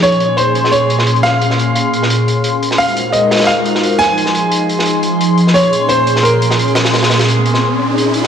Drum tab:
HH |x-x-x---x---x---x---x---x-x-x---|x---x---x---x---x---x---x---x---|x-x-x---x---xxxxx---x---x-x-x---|x---x---x---x---x---x---x---x---|
SD |--------------o-------o-----o---|--o-----------o---------------o-|------------oooo------o-----o---|--o-----------o---------------o-|

HH |x-x-x---x---x---x---x---x-x-x-x-|x-x-x-x-x---x-----------x---x---|
SD |--------------o-------o-----o-o-|o-o-o-o-------o---------------o-|